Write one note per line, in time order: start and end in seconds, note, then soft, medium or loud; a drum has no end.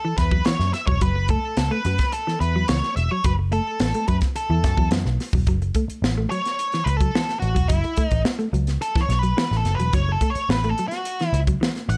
0.00 0.18 A4 medium
0.05 0.13 E3 medium
0.18 0.40 E2 loud
0.18 0.47 B4 medium
0.18 muted clean electric guitar stroke soft
0.18 kick loud
0.18 snare soft
0.18 closed hi-hat medium
0.31 0.40 F#3 medium
0.31 kick loud
0.45 0.55 E3 medium
0.45 0.73 C#5 medium
0.45 snare medium
0.45 closed hi-hat medium
0.60 0.71 F#2 medium
0.60 snare soft
0.74 0.86 E5 loud
0.74 muted clean electric guitar stroke medium
0.74 snare soft
0.74 closed hi-hat medium
0.87 0.99 E1 loud
0.87 0.96 F#3 medium
0.87 1.00 C#5 medium
0.87 kick loud
1.01 1.35 F#1 loud
1.01 1.10 F#3 loud
1.01 1.27 B4 medium
1.01 kick loud
1.01 closed hi-hat medium
1.16 muted clean electric guitar stroke soft
1.28 1.38 A3 medium
1.28 1.56 A4 loud
1.28 kick medium
1.28 closed hi-hat medium
1.57 1.69 C#2 medium
1.57 1.71 A4 medium
1.57 muted clean electric guitar stroke soft
1.57 snare loud
1.57 closed hi-hat medium
1.71 1.79 A3 medium
1.71 2.13 B4 medium
1.85 1.96 F#2 loud
1.85 1.94 F#3 medium
1.85 closed hi-hat medium
1.98 kick medium
1.98 snare soft
1.98 closed hi-hat medium
2.12 2.40 A4 medium
2.12 closed hi-hat loud
2.27 2.35 E3 medium
2.27 snare soft
2.40 2.63 E2 medium
2.40 2.66 B4 medium
2.40 muted clean electric guitar stroke soft
2.40 closed hi-hat medium
2.56 2.64 F#3 medium
2.68 2.80 C#2 medium
2.68 2.78 E3 medium
2.68 2.96 C#5 medium
2.68 snare loud
2.68 closed hi-hat medium
2.83 snare soft
2.96 3.08 E1 medium
2.96 3.11 E5 loud
2.96 muted clean electric guitar stroke soft
2.96 closed hi-hat medium
3.11 3.19 F#3 medium
3.11 3.25 C#5 medium
3.24 3.58 F#1 loud
3.24 3.33 F#3 medium
3.24 3.32 B4 medium
3.24 kick loud
3.24 closed hi-hat loud
3.39 muted clean electric guitar stroke soft
3.52 3.61 A3 medium
3.52 4.04 A4 loud
3.52 closed hi-hat medium
3.80 3.91 A1 medium
3.80 muted clean electric guitar stroke soft
3.80 snare loud
3.80 closed hi-hat medium
3.94 4.03 A3 medium
3.94 closed hi-hat medium
4.08 4.20 F#2 medium
4.08 4.16 F#3 medium
4.08 4.16 B4 medium
4.08 kick medium
4.08 closed hi-hat medium
4.21 kick medium
4.21 snare soft
4.21 closed hi-hat soft
4.36 4.88 A4 medium
4.36 closed hi-hat loud
4.50 4.64 E2 medium
4.50 4.58 E3 medium
4.64 4.75 F#2 medium
4.64 muted clean electric guitar stroke soft
4.64 kick medium
4.64 snare soft
4.64 closed hi-hat medium
4.77 4.89 E2 medium
4.77 4.86 F#3 medium
4.77 kick medium
4.91 5.03 F#2 loud
4.91 5.00 E3 medium
4.91 snare loud
4.91 closed hi-hat medium
5.05 5.17 B1 loud
5.05 snare soft
5.20 muted clean electric guitar stroke soft
5.20 snare soft
5.20 open hi-hat medium
5.33 5.45 E1 medium
5.33 5.43 F#3 medium
5.33 kick loud
5.47 5.70 F#1 loud
5.47 5.56 F#3 medium
5.47 kick loud
5.47 closed hi-hat medium
5.62 muted clean electric guitar stroke soft
5.62 closed hi-hat soft
5.74 5.84 A3 medium
5.74 kick medium
5.74 closed hi-hat medium
5.88 muted picked electric bass stroke soft
5.88 closed hi-hat medium
6.02 6.25 A1 medium
6.02 muted clean electric guitar stroke soft
6.02 snare medium
6.18 6.26 A3 medium
6.30 6.39 F#3 medium
6.30 6.88 C#5 loud
6.30 closed hi-hat medium
6.45 snare soft
6.45 closed hi-hat soft
6.59 closed hi-hat medium
6.72 6.82 E3 medium
6.72 snare soft
6.72 closed hi-hat soft
6.84 7.09 C#2 medium
6.84 6.97 B4 loud
6.84 muted clean electric guitar stroke soft
6.84 closed hi-hat medium
6.97 7.39 A4 medium
6.97 kick loud
7.01 7.09 F#3 medium
7.01 closed hi-hat medium
7.15 7.23 E3 medium
7.15 snare loud
7.29 snare soft
7.29 closed hi-hat soft
7.40 7.54 A1 medium
7.40 7.67 F#4 medium
7.40 muted clean electric guitar stroke soft
7.40 closed hi-hat medium
7.55 7.67 E1 medium
7.55 7.64 F#3 medium
7.55 kick medium
7.55 closed hi-hat medium
7.68 7.81 F#1 medium
7.68 7.78 F#3 medium
7.68 8.06 E4 medium
7.68 kick loud
7.68 closed hi-hat medium
7.84 muted clean electric guitar stroke soft
7.84 closed hi-hat soft
7.97 8.06 A3 medium
7.97 kick medium
7.97 closed hi-hat medium
8.06 8.21 D#4 medium
8.11 8.23 A1 medium
8.11 kick medium
8.11 closed hi-hat medium
8.25 muted clean electric guitar stroke soft
8.25 snare loud
8.39 8.48 A3 medium
8.39 closed hi-hat soft
8.53 8.76 C#2 medium
8.53 8.62 F#3 medium
8.53 closed hi-hat medium
8.67 snare soft
8.67 closed hi-hat medium
8.82 9.01 A4 medium
8.82 closed hi-hat loud
8.96 9.04 E3 medium
8.96 kick loud
8.96 snare soft
9.01 9.19 C#5 loud
9.09 9.32 B1 loud
9.09 muted clean electric guitar stroke soft
9.09 snare soft
9.09 closed hi-hat medium
9.19 9.57 B4 loud
9.23 9.32 F#3 medium
9.23 closed hi-hat medium
9.37 9.46 E3 medium
9.37 snare loud
9.51 9.63 A1 loud
9.51 snare soft
9.57 9.76 A4 loud
9.65 9.76 F#1 medium
9.65 muted clean electric guitar stroke soft
9.65 snare soft
9.65 closed hi-hat medium
9.75 9.90 E1 medium
9.75 9.94 B4 loud
9.80 9.88 F#3 medium
9.80 closed hi-hat medium
9.93 10.16 F#1 loud
9.93 10.02 F#3 medium
9.93 10.13 C#5 loud
9.93 kick loud
9.93 closed hi-hat medium
10.09 10.29 A4 medium
10.09 muted clean electric guitar stroke soft
10.21 10.30 A3 medium
10.21 kick medium
10.21 closed hi-hat medium
10.30 10.50 C#5 loud
10.35 muted picked electric bass stroke medium
10.35 closed hi-hat medium
10.49 10.72 A1 medium
10.49 10.69 B4 medium
10.49 muted clean electric guitar stroke soft
10.49 snare loud
10.64 10.72 A3 medium
10.64 closed hi-hat soft
10.69 10.88 A4 medium
10.78 10.87 F#3 medium
10.78 closed hi-hat medium
10.88 11.28 F#4 medium
10.88 closed hi-hat medium
10.92 snare soft
11.05 closed hi-hat loud
11.20 11.29 E3 medium
11.20 snare soft
11.20 closed hi-hat soft
11.28 11.39 E4 medium
11.33 11.56 C#2 medium
11.33 muted clean electric guitar stroke soft
11.33 closed hi-hat medium
11.47 11.56 F#3 medium
11.47 kick medium
11.47 closed hi-hat medium
11.61 11.69 E3 medium
11.61 snare loud
11.76 snare soft
11.76 closed hi-hat soft
11.89 11.97 A1 medium
11.89 11.97 F#5 loud
11.89 muted clean electric guitar stroke soft
11.89 closed hi-hat medium